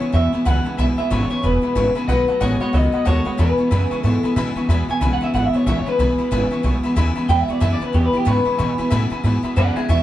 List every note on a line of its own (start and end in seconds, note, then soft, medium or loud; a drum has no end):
0.00 0.12 E2 medium
0.00 0.12 C#3 medium
0.00 0.11 E3 soft
0.00 0.12 G#3 medium
0.00 0.13 B3 soft
0.00 0.13 E4 medium
0.00 0.15 C#5 medium
0.00 0.08 G#5 medium
0.00 0.08 C#6 medium
0.00 muted upright bass stroke soft
0.12 0.32 E2 medium
0.12 0.31 E2 medium
0.12 0.31 B2 medium
0.12 0.33 E3 medium
0.12 0.33 G#3 medium
0.12 0.32 B3 medium
0.12 0.31 E4 medium
0.12 0.25 E5 medium
0.12 0.44 E5 loud
0.12 0.25 G#5 medium
0.12 0.26 C#6 medium
0.32 0.45 E2 medium
0.32 0.45 B2 medium
0.32 0.45 E3 soft
0.32 0.45 G#3 soft
0.32 0.45 B3 soft
0.32 0.46 E4 medium
0.32 0.41 E5 medium
0.32 0.41 G#5 medium
0.32 0.41 B5 medium
0.32 muted upright bass stroke medium
0.45 0.65 C#2 medium
0.45 0.65 E2 medium
0.45 0.64 E2 medium
0.45 0.66 B2 medium
0.45 0.64 C#3 medium
0.45 0.65 E3 medium
0.45 0.65 G#3 medium
0.45 0.64 B3 medium
0.45 0.63 E4 medium
0.45 0.57 E5 medium
0.45 0.78 F#5 loud
0.45 0.58 G#5 medium
0.45 0.58 B5 loud
0.64 0.77 E2 medium
0.64 0.77 C#3 medium
0.64 0.77 E3 soft
0.64 0.78 G#3 soft
0.64 0.78 B3 medium
0.64 0.78 E4 medium
0.64 0.73 E5 medium
0.64 0.74 G#5 medium
0.64 0.74 B5 medium
0.64 muted upright bass stroke medium
0.77 0.97 B1 medium
0.77 0.98 E2 medium
0.77 0.96 E2 medium
0.77 0.98 B2 medium
0.77 0.96 B2 loud
0.77 0.98 E3 medium
0.77 0.97 G#3 medium
0.77 0.97 B3 medium
0.77 0.96 E4 medium
0.77 0.90 E5 loud
0.77 0.84 E5 medium
0.77 0.90 G#5 medium
0.77 0.91 B5 loud
0.97 1.10 E2 medium
0.97 1.10 B2 medium
0.97 1.10 E3 soft
0.97 1.10 G#3 soft
0.97 1.11 B3 medium
0.97 1.10 E4 medium
0.97 1.05 E5 medium
0.97 1.11 E5 medium
0.97 1.06 G#5 medium
0.97 1.06 B5 medium
1.10 1.30 G#1 loud
1.10 1.30 E2 medium
1.10 1.29 E2 medium
1.10 1.31 B2 medium
1.10 1.29 C#3 loud
1.10 1.31 E3 medium
1.10 1.30 G#3 medium
1.10 1.30 B3 medium
1.10 1.29 E4 medium
1.10 1.29 C#5 medium
1.10 1.23 E5 loud
1.10 1.23 G#5 medium
1.10 1.24 B5 loud
1.30 1.42 E2 medium
1.30 1.43 C#3 medium
1.30 1.42 E3 soft
1.30 1.43 G#3 soft
1.30 1.43 B3 medium
1.30 1.43 E4 medium
1.30 1.44 C#5 medium
1.30 1.38 E5 medium
1.30 1.39 G#5 medium
1.30 1.39 C#6 medium
1.30 muted upright bass stroke medium
1.43 1.63 E1 medium
1.43 1.61 E2 medium
1.43 1.62 B2 medium
1.43 1.63 E3 medium
1.43 1.62 G#3 medium
1.43 1.62 B3 medium
1.43 1.60 E4 medium
1.43 1.92 B4 medium
1.43 1.55 E5 medium
1.43 1.56 G#5 medium
1.43 1.56 B5 medium
1.62 1.75 E2 medium
1.62 1.75 B2 medium
1.62 1.75 E3 soft
1.62 1.75 G#3 medium
1.62 1.76 B3 soft
1.62 1.75 E4 medium
1.62 1.71 E5 medium
1.62 1.71 G#5 medium
1.62 1.72 B5 medium
1.62 muted upright bass stroke medium
1.75 1.95 G#1 loud
1.75 1.95 E2 medium
1.75 1.94 E2 medium
1.75 1.96 B2 medium
1.75 1.94 C#3 loud
1.75 1.96 E3 medium
1.75 1.96 G#3 medium
1.75 1.95 B3 medium
1.75 1.94 E4 medium
1.75 1.88 E5 medium
1.75 1.88 G#5 medium
1.75 1.88 C#6 loud
1.95 2.07 E2 medium
1.95 2.07 C#3 medium
1.95 2.09 E3 medium
1.95 2.09 G#3 medium
1.95 2.08 B3 medium
1.95 2.08 E4 medium
1.95 2.03 E5 medium
1.95 2.04 G#5 medium
1.95 2.04 B5 loud
1.95 muted upright bass stroke medium
2.08 2.27 B1 medium
2.08 2.28 B2 medium
2.08 2.26 B2 medium
2.08 2.29 D#3 medium
2.08 2.27 F#3 loud
2.08 2.29 A3 medium
2.08 2.28 B3 medium
2.08 2.27 F#4 medium
2.08 2.42 B4 medium
2.08 2.20 D#5 loud
2.08 2.20 F#5 medium
2.08 2.21 B5 loud
2.28 2.40 B2 medium
2.28 2.40 F#3 medium
2.28 2.40 A3 soft
2.28 2.41 B3 medium
2.28 2.41 F#4 medium
2.28 2.36 D#5 medium
2.28 2.36 F#5 medium
2.28 2.37 A5 medium
2.28 muted upright bass stroke medium
2.40 2.60 A1 loud
2.40 2.61 B2 medium
2.40 2.59 B2 medium
2.40 2.61 D#3 medium
2.40 2.59 G#3 loud
2.40 2.61 A3 medium
2.40 2.61 B3 medium
2.40 2.59 F#4 loud
2.40 2.60 C#5 medium
2.40 2.53 D#5 loud
2.40 2.53 F#5 loud
2.40 2.53 G#5 loud
2.60 2.72 B2 medium
2.60 2.73 G#3 medium
2.60 2.73 A3 soft
2.60 2.74 B3 medium
2.60 2.74 F#4 medium
2.60 2.74 C#5 medium
2.60 2.68 D#5 medium
2.60 2.69 F#5 medium
2.60 2.69 B5 medium
2.60 muted upright bass stroke medium
2.72 2.93 C#2 medium
2.72 2.91 B2 medium
2.72 2.93 D#3 medium
2.72 2.92 F#3 medium
2.72 2.94 A3 medium
2.72 2.92 B3 medium
2.72 2.91 F#4 medium
2.72 2.85 D#5 medium
2.72 3.07 D#5 loud
2.72 2.85 F#5 medium
2.72 2.86 B5 medium
2.92 3.05 B2 medium
2.92 3.05 F#3 medium
2.92 3.05 A3 medium
2.92 3.06 B3 soft
2.92 3.06 F#4 medium
2.92 3.01 D#5 medium
2.92 3.01 F#5 medium
2.92 3.02 B5 medium
2.92 muted upright bass stroke medium
3.05 3.25 D#2 loud
3.05 3.26 B2 medium
3.05 3.24 B2 medium
3.05 3.26 D#3 medium
3.05 3.24 G#3 medium
3.05 3.26 A3 medium
3.05 3.25 B3 medium
3.05 3.24 F#4 medium
3.05 3.40 C#5 medium
3.05 3.17 D#5 loud
3.05 3.18 F#5 medium
3.05 3.18 A5 loud
3.25 3.38 B2 medium
3.25 3.38 G#3 medium
3.25 3.38 A3 soft
3.25 3.38 B3 soft
3.25 3.38 F#4 medium
3.25 3.33 D#5 medium
3.25 3.34 F#5 medium
3.25 3.34 B5 medium
3.25 muted upright bass stroke medium
3.38 3.58 E2 medium
3.38 3.56 E2 medium
3.38 3.58 E2 medium
3.38 3.58 B2 medium
3.38 3.57 B2 medium
3.38 3.58 E3 medium
3.38 3.58 G#3 medium
3.38 3.57 B3 medium
3.38 3.56 E4 medium
3.38 4.06 B4 medium
3.38 3.50 E5 loud
3.38 3.51 G#5 medium
3.38 3.51 B5 loud
3.58 3.70 E2 medium
3.58 3.70 B2 medium
3.58 3.71 E3 soft
3.58 3.71 G#3 soft
3.58 3.71 B3 medium
3.58 3.71 E4 medium
3.58 3.66 E5 medium
3.58 3.66 G#5 medium
3.58 3.67 C#6 medium
3.58 muted upright bass stroke medium
3.71 3.91 E2 medium
3.71 3.89 E2 medium
3.71 3.90 F#2 loud
3.71 3.91 B2 medium
3.71 3.89 C#3 loud
3.71 3.91 E3 medium
3.71 3.91 G#3 medium
3.71 3.90 B3 medium
3.71 3.90 E4 medium
3.71 3.83 E5 loud
3.71 3.83 G#5 medium
3.71 3.84 B5 loud
3.90 4.03 E2 medium
3.90 4.03 C#3 medium
3.90 4.02 E3 medium
3.90 4.03 G#3 medium
3.90 4.04 B3 medium
3.90 4.04 E4 medium
3.90 3.98 E5 medium
3.90 3.99 G#5 medium
3.90 3.99 C#6 loud
3.90 muted upright bass stroke medium
4.03 4.22 E2 medium
4.03 4.23 G#2 medium
4.03 4.22 B2 medium
4.03 4.23 E3 medium
4.03 4.24 G#3 medium
4.03 4.23 B3 medium
4.03 4.22 E4 medium
4.03 4.33 A4 medium
4.03 4.16 E5 medium
4.03 4.16 G#5 medium
4.03 4.16 C#6 medium
4.23 4.35 E2 medium
4.23 4.35 B2 medium
4.23 4.36 E3 medium
4.23 4.37 G#3 medium
4.23 4.37 B3 medium
4.23 4.36 E4 medium
4.23 4.35 E5 medium
4.23 4.32 G#5 medium
4.23 4.32 B5 loud
4.23 muted upright bass stroke medium
4.36 4.54 E2 medium
4.36 4.56 E2 medium
4.36 4.55 B2 medium
4.36 4.56 B2 medium
4.36 4.54 C#3 medium
4.36 4.56 E3 loud
4.36 4.56 G#3 medium
4.36 4.55 B3 loud
4.36 4.55 E4 medium
4.36 4.48 E5 loud
4.36 4.55 G#5 medium
4.36 4.49 B5 loud
4.56 4.67 E2 medium
4.56 4.68 C#3 medium
4.56 4.69 E3 soft
4.56 4.70 G#3 medium
4.56 4.69 B3 medium
4.56 4.69 E4 medium
4.56 4.64 E5 medium
4.56 4.64 G#5 medium
4.56 4.68 B5 medium
4.56 4.64 C#6 medium
4.56 muted upright bass stroke medium
4.69 4.88 E2 medium
4.69 4.86 E2 medium
4.69 4.89 E2 medium
4.69 4.87 B2 medium
4.69 4.89 B2 medium
4.69 4.89 E3 medium
4.69 4.89 G#3 medium
4.69 4.88 B3 medium
4.69 4.87 E4 medium
4.69 4.81 E5 loud
4.69 4.81 G#5 loud
4.69 4.81 B5 loud
4.88 5.00 E2 medium
4.88 5.00 B2 medium
4.88 5.01 E3 soft
4.88 5.01 G#3 soft
4.88 5.01 B3 medium
4.88 5.01 E4 medium
4.88 4.96 E5 medium
4.88 4.97 G#5 medium
4.88 5.12 G#5 loud
4.88 4.97 C#6 medium
4.88 muted upright bass stroke medium
5.00 5.20 B1 medium
5.00 5.21 E2 medium
5.00 5.19 E2 medium
5.00 5.21 B2 medium
5.00 5.19 C#3 loud
5.00 5.22 E3 medium
5.00 5.21 G#3 medium
5.00 5.21 B3 medium
5.00 5.20 E4 medium
5.00 5.13 E5 loud
5.00 5.13 G#5 loud
5.00 5.14 B5 loud
5.13 5.23 F#5 medium
5.20 5.33 E2 medium
5.20 5.33 C#3 medium
5.20 5.32 E3 soft
5.20 5.34 G#3 soft
5.20 5.34 B3 medium
5.20 5.34 E4 medium
5.20 5.28 E5 medium
5.20 5.34 E5 medium
5.20 5.29 G#5 medium
5.20 5.29 B5 medium
5.34 5.53 G#1 medium
5.34 5.52 E2 medium
5.34 5.52 B2 medium
5.34 5.53 E3 medium
5.34 5.54 G#3 medium
5.34 5.53 B3 medium
5.34 5.52 E4 medium
5.34 5.46 E5 medium
5.34 5.45 F#5 loud
5.34 5.46 G#5 medium
5.34 5.46 B5 medium
5.45 5.56 E5 medium
5.53 5.65 E2 medium
5.53 5.65 B2 medium
5.53 5.66 E3 soft
5.53 5.67 G#3 soft
5.53 5.67 B3 medium
5.53 5.66 E4 medium
5.53 5.66 C#5 medium
5.53 5.61 E5 medium
5.53 5.62 G#5 medium
5.53 5.62 B5 medium
5.53 muted upright bass stroke medium
5.66 5.85 A#1 loud
5.66 5.84 E2 medium
5.66 5.86 E2 medium
5.66 5.86 B2 medium
5.66 5.84 C#3 loud
5.66 5.87 E3 medium
5.66 5.87 G#3 medium
5.66 5.86 B3 medium
5.66 5.85 E4 medium
5.66 5.78 E5 loud
5.66 5.78 E5 medium
5.66 5.79 G#5 medium
5.66 5.79 C#6 loud
5.78 5.88 C#5 medium
5.85 5.97 E2 medium
5.85 5.98 C#3 medium
5.85 5.98 E3 soft
5.85 5.99 G#3 soft
5.85 5.99 B3 medium
5.85 5.99 E4 medium
5.85 5.99 B4 medium
5.85 5.94 E5 medium
5.85 5.94 G#5 medium
5.85 5.95 B5 medium
5.85 muted upright bass stroke medium
5.98 6.18 B1 medium
5.98 6.16 E2 medium
5.98 6.19 E2 medium
5.98 6.17 B2 medium
5.98 6.19 B2 medium
5.98 6.19 E3 medium
5.98 6.18 G#3 medium
5.98 6.18 B3 medium
5.98 6.17 E4 medium
5.98 6.62 B4 loud
5.98 6.11 E5 loud
5.98 6.11 G#5 medium
5.98 6.11 B5 loud
6.18 6.30 E2 medium
6.18 6.30 B2 medium
6.18 6.30 E3 soft
6.18 6.31 G#3 medium
6.18 6.31 B3 medium
6.18 6.31 E4 medium
6.18 6.26 E5 medium
6.18 6.26 G#5 medium
6.18 6.27 B5 medium
6.31 6.51 G#1 loud
6.31 6.49 E2 medium
6.31 6.51 E2 medium
6.31 6.51 B2 medium
6.31 6.49 C#3 medium
6.31 6.51 E3 medium
6.31 6.51 G#3 loud
6.31 6.50 B3 medium
6.31 6.49 E4 medium
6.31 6.43 E5 loud
6.31 6.44 G#5 loud
6.31 6.44 B5 loud
6.51 6.62 E2 medium
6.51 6.63 C#3 medium
6.51 6.62 E3 medium
6.51 6.63 G#3 medium
6.51 6.63 B3 medium
6.51 6.64 E4 medium
6.51 6.59 E5 medium
6.51 6.59 G#5 medium
6.51 6.60 C#6 loud
6.63 6.83 B1 medium
6.63 6.81 E2 medium
6.63 6.82 B2 loud
6.63 6.83 E3 medium
6.63 6.84 G#3 medium
6.63 6.83 B3 medium
6.63 6.82 E4 medium
6.63 6.76 E5 medium
6.63 6.76 G#5 medium
6.63 6.77 C#6 loud
6.83 6.95 E2 medium
6.83 6.95 B2 medium
6.83 6.95 E3 medium
6.83 6.96 G#3 medium
6.83 6.96 B3 medium
6.83 6.96 E4 medium
6.83 6.91 E5 medium
6.83 6.92 G#5 medium
6.83 6.92 B5 loud
6.83 muted upright bass stroke medium
6.96 7.16 D#2 loud
6.96 7.16 E2 medium
6.96 7.14 E2 medium
6.96 7.16 B2 medium
6.96 7.14 C#3 loud
6.96 7.16 E3 loud
6.96 7.16 G#3 medium
6.96 7.15 B3 loud
6.96 7.14 E4 loud
6.96 7.08 E5 loud
6.96 7.09 G#5 loud
6.96 7.09 B5 loud
7.15 7.27 E2 medium
7.15 7.28 C#3 medium
7.15 7.28 E3 medium
7.15 7.29 G#3 medium
7.15 7.29 B3 medium
7.15 7.29 E4 medium
7.15 7.24 E5 medium
7.15 7.24 G#5 medium
7.15 7.24 B5 loud
7.15 muted upright bass stroke medium
7.29 7.48 E2 medium
7.29 7.46 E2 loud
7.29 7.48 E2 medium
7.29 7.47 B2 medium
7.29 7.49 B2 medium
7.29 7.49 E3 medium
7.29 7.48 G#3 medium
7.29 7.47 B3 medium
7.29 7.47 E4 medium
7.29 7.41 E5 loud
7.29 7.41 G5 loud
7.29 7.41 G#5 medium
7.29 7.41 B5 loud
7.41 7.51 E5 medium
7.48 7.60 E2 medium
7.48 7.60 B2 medium
7.48 7.60 E3 soft
7.48 7.60 G#3 soft
7.48 7.61 B3 medium
7.48 7.61 E4 medium
7.48 7.61 D5 medium
7.48 7.56 E5 medium
7.48 7.57 G#5 medium
7.48 7.57 C#6 medium
7.48 muted upright bass stroke medium
7.60 7.81 E2 medium
7.60 7.79 E2 medium
7.60 7.80 F#2 loud
7.60 7.81 B2 medium
7.60 7.79 C#3 loud
7.60 7.81 E3 medium
7.60 7.80 G#3 medium
7.60 7.80 B3 medium
7.60 7.79 E4 medium
7.60 7.73 E5 loud
7.60 7.72 E5 medium
7.60 7.73 G#5 loud
7.60 7.73 B5 loud
7.73 7.83 D5 medium
7.80 7.92 E2 medium
7.80 7.93 C#3 medium
7.80 7.92 E3 soft
7.80 7.93 G#3 soft
7.80 7.93 B3 medium
7.80 7.93 E4 medium
7.80 7.94 B4 medium
7.80 7.89 E5 medium
7.80 7.89 G#5 medium
7.80 7.89 B5 medium
7.80 muted upright bass stroke medium
7.93 8.12 E2 medium
7.93 8.13 E2 medium
7.93 8.12 B2 medium
7.93 8.13 E3 medium
7.93 8.14 G#3 medium
7.93 8.12 B3 medium
7.93 8.12 E4 medium
7.93 8.05 G4 loud
7.93 8.05 E5 medium
7.93 8.06 G#5 medium
7.93 8.06 C#6 medium
8.05 8.16 B4 medium
8.13 8.25 E2 medium
8.13 8.25 B2 medium
8.13 8.25 E3 medium
8.13 8.25 G#3 soft
8.13 8.25 B3 soft
8.13 8.26 E4 medium
8.13 8.21 E5 medium
8.13 8.21 G#5 medium
8.13 8.22 B5 medium
8.13 muted upright bass stroke medium
8.17 8.27 G4 medium
8.25 8.45 E2 medium
8.25 8.44 E2 loud
8.25 8.46 G#2 loud
8.25 8.46 B2 medium
8.25 8.44 C#3 loud
8.25 8.46 E3 medium
8.25 8.46 G#3 medium
8.25 8.45 B3 medium
8.25 8.44 E4 medium
8.25 8.90 B4 loud
8.25 8.38 E5 medium
8.25 8.38 G#5 medium
8.25 8.39 C#6 loud
8.45 8.57 E2 medium
8.45 8.58 C#3 medium
8.45 8.58 E3 soft
8.45 8.58 G#3 soft
8.45 8.59 B3 medium
8.45 8.58 E4 medium
8.45 8.53 E5 medium
8.45 8.54 G#5 medium
8.45 8.54 C#6 medium
8.45 muted upright bass stroke medium
8.58 8.78 E2 medium
8.58 8.77 E2 medium
8.58 8.79 B2 medium
8.58 8.77 B2 loud
8.58 8.78 B2 medium
8.58 8.79 E3 medium
8.58 8.78 G#3 medium
8.58 8.78 B3 medium
8.58 8.77 E4 medium
8.58 8.70 E5 loud
8.58 8.71 G#5 medium
8.58 8.71 C#6 loud
8.78 8.90 E2 medium
8.78 8.90 B2 medium
8.78 8.90 E3 medium
8.78 8.90 G#3 medium
8.78 8.91 B3 medium
8.78 8.91 E4 medium
8.78 8.86 E5 medium
8.78 8.86 G#5 medium
8.78 8.87 B5 loud
8.78 muted upright bass stroke medium
8.90 9.11 E2 medium
8.90 9.09 E2 medium
8.90 9.10 A2 loud
8.90 9.11 B2 loud
8.90 9.09 C#3 loud
8.90 9.11 E3 loud
8.90 9.11 G#3 loud
8.90 9.10 B3 loud
8.90 9.09 E4 loud
8.90 9.03 E5 loud
8.90 9.03 G#5 loud
8.90 9.03 B5 loud
9.10 9.22 E2 medium
9.10 9.23 C#3 medium
9.10 9.22 E3 medium
9.10 9.23 G#3 medium
9.10 9.24 B3 medium
9.10 9.23 E4 medium
9.10 9.19 E5 medium
9.10 9.19 G#5 medium
9.10 9.20 B5 loud
9.10 muted upright bass stroke medium
9.23 9.42 E2 medium
9.23 9.43 G#2 medium
9.23 9.42 B2 medium
9.23 9.43 E3 medium
9.23 9.44 G#3 medium
9.23 9.43 B3 medium
9.23 9.42 E4 medium
9.23 9.36 E5 medium
9.23 9.36 G#5 medium
9.23 9.36 B5 loud
9.43 9.55 E2 medium
9.43 9.55 B2 medium
9.43 9.56 E3 medium
9.43 9.56 G#3 medium
9.43 9.56 B3 medium
9.43 9.56 E4 medium
9.43 9.51 E5 medium
9.43 9.52 G#5 medium
9.43 9.52 B5 loud
9.43 muted upright bass stroke medium
9.56 9.76 E2 medium
9.56 9.74 E2 loud
9.56 9.75 F#2 loud
9.56 9.76 B2 medium
9.56 9.75 C#3 loud
9.56 9.76 E3 medium
9.56 9.76 G#3 medium
9.56 9.75 B3 medium
9.56 9.75 E4 medium
9.56 9.76 D5 medium
9.56 9.68 E5 loud
9.56 9.76 F#5 loud
9.56 9.69 G#5 medium
9.56 9.69 B5 loud
9.75 9.88 E2 medium
9.75 9.88 C#3 medium
9.75 9.88 E3 soft
9.75 9.89 G#3 soft
9.75 9.89 B3 medium
9.75 9.89 E4 medium
9.75 9.89 G#4 medium
9.75 9.84 E5 medium
9.75 9.88 E5 loud
9.75 9.84 G#5 medium
9.75 9.84 B5 medium
9.75 muted upright bass stroke medium
9.88 10.03 E2 medium
9.88 10.03 B2 medium
9.88 10.03 E3 medium
9.88 10.03 G#3 medium
9.88 10.03 B3 medium
9.88 10.03 E4 medium
9.88 10.01 E5 loud
9.88 10.03 E5 loud
9.88 10.01 G#5 medium
9.88 10.01 C#6 loud